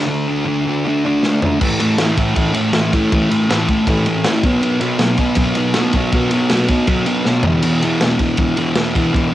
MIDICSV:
0, 0, Header, 1, 3, 480
1, 0, Start_track
1, 0, Tempo, 376176
1, 142, Time_signature, 4, 2, 24, 8
1, 11922, End_track
2, 0, Start_track
2, 0, Title_t, "Distorted electric guitar"
2, 0, Program_c, 0, 30
2, 90, Note_on_c, 0, 50, 86
2, 115, Note_on_c, 0, 57, 114
2, 129, Note_on_c, 0, 62, 100
2, 339, Note_off_c, 0, 62, 0
2, 354, Note_on_c, 0, 62, 76
2, 382, Note_off_c, 0, 57, 0
2, 397, Note_on_c, 0, 57, 62
2, 564, Note_off_c, 0, 50, 0
2, 580, Note_on_c, 0, 50, 100
2, 585, Note_off_c, 0, 57, 0
2, 601, Note_on_c, 0, 57, 103
2, 602, Note_off_c, 0, 62, 0
2, 618, Note_on_c, 0, 62, 117
2, 836, Note_off_c, 0, 62, 0
2, 851, Note_on_c, 0, 62, 77
2, 867, Note_off_c, 0, 57, 0
2, 883, Note_on_c, 0, 57, 64
2, 1067, Note_off_c, 0, 50, 0
2, 1082, Note_on_c, 0, 50, 89
2, 1091, Note_off_c, 0, 57, 0
2, 1106, Note_on_c, 0, 57, 84
2, 1115, Note_off_c, 0, 62, 0
2, 1130, Note_on_c, 0, 62, 93
2, 1324, Note_off_c, 0, 62, 0
2, 1339, Note_off_c, 0, 57, 0
2, 1339, Note_on_c, 0, 62, 105
2, 1354, Note_on_c, 0, 57, 83
2, 1359, Note_off_c, 0, 50, 0
2, 1375, Note_on_c, 0, 50, 74
2, 1558, Note_off_c, 0, 50, 0
2, 1573, Note_on_c, 0, 50, 82
2, 1580, Note_off_c, 0, 57, 0
2, 1595, Note_on_c, 0, 57, 89
2, 1605, Note_off_c, 0, 62, 0
2, 1620, Note_on_c, 0, 62, 82
2, 1796, Note_off_c, 0, 62, 0
2, 1811, Note_on_c, 0, 62, 71
2, 1843, Note_off_c, 0, 57, 0
2, 1859, Note_on_c, 0, 57, 59
2, 2037, Note_off_c, 0, 50, 0
2, 2039, Note_off_c, 0, 62, 0
2, 2042, Note_on_c, 0, 45, 100
2, 2045, Note_off_c, 0, 57, 0
2, 2055, Note_on_c, 0, 52, 101
2, 2060, Note_on_c, 0, 57, 105
2, 2285, Note_off_c, 0, 45, 0
2, 2290, Note_on_c, 0, 45, 85
2, 2303, Note_off_c, 0, 52, 0
2, 2308, Note_on_c, 0, 52, 96
2, 2309, Note_off_c, 0, 57, 0
2, 2314, Note_on_c, 0, 57, 100
2, 2530, Note_off_c, 0, 45, 0
2, 2535, Note_on_c, 0, 45, 97
2, 2537, Note_off_c, 0, 52, 0
2, 2542, Note_on_c, 0, 52, 111
2, 2551, Note_off_c, 0, 57, 0
2, 2556, Note_on_c, 0, 57, 99
2, 2755, Note_off_c, 0, 45, 0
2, 2763, Note_off_c, 0, 52, 0
2, 2771, Note_on_c, 0, 45, 92
2, 2775, Note_off_c, 0, 57, 0
2, 2778, Note_on_c, 0, 52, 88
2, 2790, Note_on_c, 0, 57, 100
2, 2976, Note_off_c, 0, 45, 0
2, 2984, Note_off_c, 0, 52, 0
2, 2991, Note_on_c, 0, 45, 104
2, 2996, Note_off_c, 0, 57, 0
2, 2999, Note_on_c, 0, 52, 111
2, 3011, Note_on_c, 0, 57, 111
2, 3216, Note_off_c, 0, 45, 0
2, 3229, Note_off_c, 0, 52, 0
2, 3232, Note_on_c, 0, 45, 88
2, 3236, Note_off_c, 0, 57, 0
2, 3244, Note_on_c, 0, 52, 100
2, 3251, Note_on_c, 0, 57, 100
2, 3465, Note_off_c, 0, 45, 0
2, 3478, Note_off_c, 0, 57, 0
2, 3479, Note_off_c, 0, 52, 0
2, 3481, Note_on_c, 0, 45, 92
2, 3493, Note_on_c, 0, 57, 87
2, 3494, Note_on_c, 0, 52, 100
2, 3742, Note_off_c, 0, 45, 0
2, 3742, Note_off_c, 0, 52, 0
2, 3749, Note_off_c, 0, 57, 0
2, 3757, Note_on_c, 0, 45, 89
2, 3757, Note_on_c, 0, 52, 84
2, 3764, Note_on_c, 0, 57, 95
2, 3973, Note_off_c, 0, 45, 0
2, 3988, Note_on_c, 0, 45, 98
2, 3992, Note_off_c, 0, 52, 0
2, 3996, Note_off_c, 0, 57, 0
2, 4007, Note_on_c, 0, 52, 109
2, 4011, Note_on_c, 0, 57, 108
2, 4194, Note_off_c, 0, 45, 0
2, 4200, Note_off_c, 0, 52, 0
2, 4206, Note_off_c, 0, 57, 0
2, 4210, Note_on_c, 0, 45, 97
2, 4216, Note_on_c, 0, 52, 98
2, 4221, Note_on_c, 0, 57, 96
2, 4438, Note_off_c, 0, 45, 0
2, 4440, Note_off_c, 0, 52, 0
2, 4447, Note_off_c, 0, 57, 0
2, 4453, Note_on_c, 0, 45, 100
2, 4455, Note_on_c, 0, 52, 104
2, 4462, Note_on_c, 0, 57, 104
2, 4699, Note_off_c, 0, 45, 0
2, 4701, Note_off_c, 0, 52, 0
2, 4710, Note_off_c, 0, 57, 0
2, 4714, Note_on_c, 0, 45, 88
2, 4716, Note_on_c, 0, 52, 83
2, 4725, Note_on_c, 0, 57, 97
2, 4935, Note_off_c, 0, 45, 0
2, 4949, Note_off_c, 0, 52, 0
2, 4951, Note_on_c, 0, 45, 92
2, 4956, Note_off_c, 0, 57, 0
2, 4964, Note_on_c, 0, 52, 111
2, 4971, Note_on_c, 0, 57, 120
2, 5175, Note_off_c, 0, 52, 0
2, 5181, Note_off_c, 0, 45, 0
2, 5190, Note_on_c, 0, 52, 97
2, 5196, Note_on_c, 0, 45, 89
2, 5198, Note_off_c, 0, 57, 0
2, 5213, Note_on_c, 0, 57, 104
2, 5426, Note_off_c, 0, 45, 0
2, 5441, Note_off_c, 0, 52, 0
2, 5442, Note_on_c, 0, 45, 102
2, 5443, Note_off_c, 0, 57, 0
2, 5456, Note_on_c, 0, 52, 100
2, 5458, Note_on_c, 0, 57, 105
2, 5653, Note_off_c, 0, 45, 0
2, 5661, Note_off_c, 0, 52, 0
2, 5661, Note_off_c, 0, 57, 0
2, 5682, Note_on_c, 0, 47, 103
2, 5696, Note_on_c, 0, 59, 111
2, 5697, Note_on_c, 0, 54, 104
2, 5894, Note_off_c, 0, 47, 0
2, 5899, Note_on_c, 0, 47, 108
2, 5908, Note_off_c, 0, 54, 0
2, 5909, Note_off_c, 0, 59, 0
2, 5913, Note_on_c, 0, 54, 113
2, 5914, Note_on_c, 0, 59, 106
2, 6125, Note_off_c, 0, 47, 0
2, 6130, Note_on_c, 0, 47, 84
2, 6136, Note_off_c, 0, 54, 0
2, 6137, Note_off_c, 0, 59, 0
2, 6141, Note_on_c, 0, 54, 94
2, 6142, Note_on_c, 0, 59, 90
2, 6365, Note_off_c, 0, 47, 0
2, 6369, Note_off_c, 0, 54, 0
2, 6370, Note_on_c, 0, 47, 93
2, 6373, Note_off_c, 0, 59, 0
2, 6374, Note_on_c, 0, 54, 100
2, 6379, Note_on_c, 0, 59, 105
2, 6594, Note_off_c, 0, 47, 0
2, 6610, Note_on_c, 0, 47, 95
2, 6612, Note_off_c, 0, 54, 0
2, 6621, Note_off_c, 0, 59, 0
2, 6626, Note_on_c, 0, 59, 110
2, 6627, Note_on_c, 0, 54, 94
2, 6822, Note_off_c, 0, 47, 0
2, 6830, Note_off_c, 0, 54, 0
2, 6837, Note_on_c, 0, 47, 106
2, 6845, Note_on_c, 0, 54, 100
2, 6857, Note_off_c, 0, 59, 0
2, 6862, Note_on_c, 0, 59, 118
2, 7070, Note_off_c, 0, 47, 0
2, 7086, Note_on_c, 0, 47, 84
2, 7091, Note_off_c, 0, 54, 0
2, 7105, Note_off_c, 0, 59, 0
2, 7107, Note_on_c, 0, 54, 91
2, 7110, Note_on_c, 0, 59, 110
2, 7337, Note_off_c, 0, 47, 0
2, 7345, Note_off_c, 0, 54, 0
2, 7352, Note_on_c, 0, 47, 93
2, 7360, Note_on_c, 0, 54, 100
2, 7375, Note_off_c, 0, 59, 0
2, 7380, Note_on_c, 0, 59, 105
2, 7585, Note_off_c, 0, 47, 0
2, 7601, Note_on_c, 0, 47, 87
2, 7603, Note_off_c, 0, 54, 0
2, 7608, Note_off_c, 0, 59, 0
2, 7613, Note_on_c, 0, 59, 99
2, 7618, Note_on_c, 0, 54, 106
2, 7817, Note_off_c, 0, 54, 0
2, 7818, Note_off_c, 0, 47, 0
2, 7832, Note_on_c, 0, 54, 108
2, 7833, Note_on_c, 0, 47, 86
2, 7839, Note_off_c, 0, 59, 0
2, 7844, Note_on_c, 0, 59, 100
2, 8044, Note_off_c, 0, 47, 0
2, 8045, Note_off_c, 0, 54, 0
2, 8059, Note_on_c, 0, 47, 92
2, 8060, Note_on_c, 0, 54, 96
2, 8071, Note_off_c, 0, 59, 0
2, 8076, Note_on_c, 0, 59, 98
2, 8303, Note_off_c, 0, 54, 0
2, 8304, Note_off_c, 0, 47, 0
2, 8319, Note_on_c, 0, 47, 96
2, 8319, Note_on_c, 0, 54, 103
2, 8328, Note_off_c, 0, 59, 0
2, 8333, Note_on_c, 0, 59, 108
2, 8521, Note_off_c, 0, 47, 0
2, 8536, Note_on_c, 0, 47, 85
2, 8542, Note_off_c, 0, 54, 0
2, 8553, Note_off_c, 0, 59, 0
2, 8557, Note_on_c, 0, 54, 93
2, 8558, Note_on_c, 0, 59, 109
2, 8761, Note_off_c, 0, 54, 0
2, 8762, Note_off_c, 0, 47, 0
2, 8777, Note_on_c, 0, 47, 89
2, 8777, Note_on_c, 0, 54, 99
2, 8785, Note_off_c, 0, 59, 0
2, 8790, Note_on_c, 0, 59, 100
2, 9006, Note_off_c, 0, 47, 0
2, 9015, Note_off_c, 0, 54, 0
2, 9021, Note_off_c, 0, 59, 0
2, 9021, Note_on_c, 0, 47, 82
2, 9026, Note_on_c, 0, 59, 116
2, 9030, Note_on_c, 0, 54, 82
2, 9237, Note_off_c, 0, 47, 0
2, 9246, Note_off_c, 0, 54, 0
2, 9252, Note_on_c, 0, 47, 88
2, 9261, Note_on_c, 0, 54, 99
2, 9264, Note_off_c, 0, 59, 0
2, 9269, Note_on_c, 0, 59, 97
2, 9481, Note_off_c, 0, 47, 0
2, 9485, Note_off_c, 0, 54, 0
2, 9502, Note_on_c, 0, 40, 100
2, 9510, Note_on_c, 0, 47, 108
2, 9518, Note_on_c, 0, 52, 120
2, 9730, Note_off_c, 0, 47, 0
2, 9738, Note_off_c, 0, 40, 0
2, 9743, Note_on_c, 0, 40, 105
2, 9755, Note_on_c, 0, 47, 106
2, 9760, Note_off_c, 0, 52, 0
2, 9766, Note_on_c, 0, 52, 124
2, 9975, Note_off_c, 0, 40, 0
2, 9990, Note_off_c, 0, 47, 0
2, 9991, Note_on_c, 0, 40, 83
2, 9996, Note_off_c, 0, 52, 0
2, 10001, Note_on_c, 0, 52, 98
2, 10006, Note_on_c, 0, 47, 94
2, 10202, Note_off_c, 0, 40, 0
2, 10217, Note_off_c, 0, 47, 0
2, 10217, Note_on_c, 0, 40, 98
2, 10230, Note_off_c, 0, 52, 0
2, 10233, Note_on_c, 0, 47, 96
2, 10246, Note_on_c, 0, 52, 114
2, 10447, Note_off_c, 0, 40, 0
2, 10456, Note_off_c, 0, 47, 0
2, 10462, Note_on_c, 0, 40, 76
2, 10463, Note_off_c, 0, 52, 0
2, 10471, Note_on_c, 0, 47, 96
2, 10478, Note_on_c, 0, 52, 95
2, 10683, Note_off_c, 0, 40, 0
2, 10692, Note_off_c, 0, 47, 0
2, 10697, Note_off_c, 0, 52, 0
2, 10698, Note_on_c, 0, 40, 106
2, 10707, Note_on_c, 0, 47, 105
2, 10712, Note_on_c, 0, 52, 124
2, 10904, Note_off_c, 0, 40, 0
2, 10920, Note_on_c, 0, 40, 90
2, 10922, Note_off_c, 0, 47, 0
2, 10930, Note_off_c, 0, 52, 0
2, 10937, Note_on_c, 0, 47, 98
2, 10946, Note_on_c, 0, 52, 97
2, 11154, Note_off_c, 0, 40, 0
2, 11163, Note_off_c, 0, 47, 0
2, 11167, Note_off_c, 0, 52, 0
2, 11169, Note_on_c, 0, 40, 92
2, 11178, Note_on_c, 0, 47, 102
2, 11182, Note_on_c, 0, 52, 107
2, 11407, Note_off_c, 0, 47, 0
2, 11410, Note_off_c, 0, 40, 0
2, 11420, Note_off_c, 0, 52, 0
2, 11422, Note_on_c, 0, 47, 92
2, 11425, Note_on_c, 0, 40, 92
2, 11435, Note_on_c, 0, 52, 117
2, 11637, Note_off_c, 0, 40, 0
2, 11639, Note_off_c, 0, 47, 0
2, 11652, Note_on_c, 0, 40, 99
2, 11654, Note_on_c, 0, 47, 118
2, 11658, Note_off_c, 0, 52, 0
2, 11673, Note_on_c, 0, 52, 120
2, 11882, Note_off_c, 0, 40, 0
2, 11898, Note_off_c, 0, 47, 0
2, 11906, Note_off_c, 0, 52, 0
2, 11922, Note_off_c, 0, 59, 0
2, 11922, End_track
3, 0, Start_track
3, 0, Title_t, "Drums"
3, 1569, Note_on_c, 9, 38, 58
3, 1697, Note_off_c, 9, 38, 0
3, 1816, Note_on_c, 9, 43, 84
3, 1943, Note_off_c, 9, 43, 0
3, 2054, Note_on_c, 9, 49, 121
3, 2057, Note_on_c, 9, 36, 116
3, 2181, Note_off_c, 9, 49, 0
3, 2185, Note_off_c, 9, 36, 0
3, 2296, Note_on_c, 9, 51, 81
3, 2424, Note_off_c, 9, 51, 0
3, 2529, Note_on_c, 9, 51, 115
3, 2531, Note_on_c, 9, 38, 115
3, 2656, Note_off_c, 9, 51, 0
3, 2659, Note_off_c, 9, 38, 0
3, 2774, Note_on_c, 9, 51, 84
3, 2777, Note_on_c, 9, 36, 81
3, 2901, Note_off_c, 9, 51, 0
3, 2905, Note_off_c, 9, 36, 0
3, 3011, Note_on_c, 9, 51, 118
3, 3017, Note_on_c, 9, 36, 117
3, 3139, Note_off_c, 9, 51, 0
3, 3144, Note_off_c, 9, 36, 0
3, 3246, Note_on_c, 9, 51, 86
3, 3373, Note_off_c, 9, 51, 0
3, 3484, Note_on_c, 9, 51, 110
3, 3486, Note_on_c, 9, 38, 109
3, 3611, Note_off_c, 9, 51, 0
3, 3614, Note_off_c, 9, 38, 0
3, 3738, Note_on_c, 9, 51, 86
3, 3741, Note_on_c, 9, 36, 93
3, 3865, Note_off_c, 9, 51, 0
3, 3868, Note_off_c, 9, 36, 0
3, 3983, Note_on_c, 9, 51, 127
3, 3985, Note_on_c, 9, 36, 120
3, 4111, Note_off_c, 9, 51, 0
3, 4113, Note_off_c, 9, 36, 0
3, 4229, Note_on_c, 9, 51, 81
3, 4357, Note_off_c, 9, 51, 0
3, 4472, Note_on_c, 9, 51, 104
3, 4475, Note_on_c, 9, 38, 115
3, 4600, Note_off_c, 9, 51, 0
3, 4602, Note_off_c, 9, 38, 0
3, 4704, Note_on_c, 9, 36, 82
3, 4704, Note_on_c, 9, 51, 83
3, 4831, Note_off_c, 9, 51, 0
3, 4832, Note_off_c, 9, 36, 0
3, 4939, Note_on_c, 9, 36, 125
3, 4943, Note_on_c, 9, 51, 118
3, 5067, Note_off_c, 9, 36, 0
3, 5071, Note_off_c, 9, 51, 0
3, 5180, Note_on_c, 9, 51, 73
3, 5307, Note_off_c, 9, 51, 0
3, 5415, Note_on_c, 9, 51, 106
3, 5417, Note_on_c, 9, 38, 120
3, 5542, Note_off_c, 9, 51, 0
3, 5545, Note_off_c, 9, 38, 0
3, 5658, Note_on_c, 9, 51, 78
3, 5659, Note_on_c, 9, 36, 118
3, 5786, Note_off_c, 9, 51, 0
3, 5787, Note_off_c, 9, 36, 0
3, 5905, Note_on_c, 9, 51, 97
3, 6032, Note_off_c, 9, 51, 0
3, 6134, Note_on_c, 9, 51, 80
3, 6262, Note_off_c, 9, 51, 0
3, 6367, Note_on_c, 9, 51, 98
3, 6370, Note_on_c, 9, 38, 104
3, 6495, Note_off_c, 9, 51, 0
3, 6497, Note_off_c, 9, 38, 0
3, 6605, Note_on_c, 9, 51, 80
3, 6614, Note_on_c, 9, 36, 84
3, 6732, Note_off_c, 9, 51, 0
3, 6741, Note_off_c, 9, 36, 0
3, 6829, Note_on_c, 9, 51, 127
3, 6851, Note_on_c, 9, 36, 120
3, 6956, Note_off_c, 9, 51, 0
3, 6979, Note_off_c, 9, 36, 0
3, 7082, Note_on_c, 9, 51, 82
3, 7209, Note_off_c, 9, 51, 0
3, 7321, Note_on_c, 9, 51, 113
3, 7324, Note_on_c, 9, 38, 109
3, 7449, Note_off_c, 9, 51, 0
3, 7451, Note_off_c, 9, 38, 0
3, 7564, Note_on_c, 9, 51, 86
3, 7574, Note_on_c, 9, 36, 86
3, 7692, Note_off_c, 9, 51, 0
3, 7702, Note_off_c, 9, 36, 0
3, 7813, Note_on_c, 9, 51, 112
3, 7816, Note_on_c, 9, 36, 112
3, 7941, Note_off_c, 9, 51, 0
3, 7944, Note_off_c, 9, 36, 0
3, 8048, Note_on_c, 9, 51, 92
3, 8176, Note_off_c, 9, 51, 0
3, 8287, Note_on_c, 9, 51, 107
3, 8290, Note_on_c, 9, 38, 105
3, 8415, Note_off_c, 9, 51, 0
3, 8418, Note_off_c, 9, 38, 0
3, 8528, Note_on_c, 9, 51, 84
3, 8537, Note_on_c, 9, 36, 87
3, 8655, Note_off_c, 9, 51, 0
3, 8664, Note_off_c, 9, 36, 0
3, 8769, Note_on_c, 9, 51, 115
3, 8775, Note_on_c, 9, 36, 114
3, 8897, Note_off_c, 9, 51, 0
3, 8903, Note_off_c, 9, 36, 0
3, 9010, Note_on_c, 9, 51, 80
3, 9137, Note_off_c, 9, 51, 0
3, 9254, Note_on_c, 9, 38, 61
3, 9382, Note_off_c, 9, 38, 0
3, 9480, Note_on_c, 9, 43, 107
3, 9607, Note_off_c, 9, 43, 0
3, 9729, Note_on_c, 9, 49, 100
3, 9729, Note_on_c, 9, 51, 117
3, 9856, Note_off_c, 9, 49, 0
3, 9856, Note_off_c, 9, 51, 0
3, 9983, Note_on_c, 9, 51, 86
3, 10111, Note_off_c, 9, 51, 0
3, 10216, Note_on_c, 9, 51, 97
3, 10219, Note_on_c, 9, 38, 112
3, 10344, Note_off_c, 9, 51, 0
3, 10346, Note_off_c, 9, 38, 0
3, 10451, Note_on_c, 9, 51, 77
3, 10455, Note_on_c, 9, 36, 81
3, 10579, Note_off_c, 9, 51, 0
3, 10583, Note_off_c, 9, 36, 0
3, 10681, Note_on_c, 9, 51, 116
3, 10695, Note_on_c, 9, 36, 115
3, 10809, Note_off_c, 9, 51, 0
3, 10823, Note_off_c, 9, 36, 0
3, 10935, Note_on_c, 9, 51, 82
3, 11063, Note_off_c, 9, 51, 0
3, 11170, Note_on_c, 9, 51, 102
3, 11172, Note_on_c, 9, 38, 113
3, 11297, Note_off_c, 9, 51, 0
3, 11300, Note_off_c, 9, 38, 0
3, 11425, Note_on_c, 9, 36, 92
3, 11431, Note_on_c, 9, 51, 83
3, 11553, Note_off_c, 9, 36, 0
3, 11558, Note_off_c, 9, 51, 0
3, 11669, Note_on_c, 9, 36, 119
3, 11687, Note_on_c, 9, 51, 106
3, 11797, Note_off_c, 9, 36, 0
3, 11814, Note_off_c, 9, 51, 0
3, 11922, End_track
0, 0, End_of_file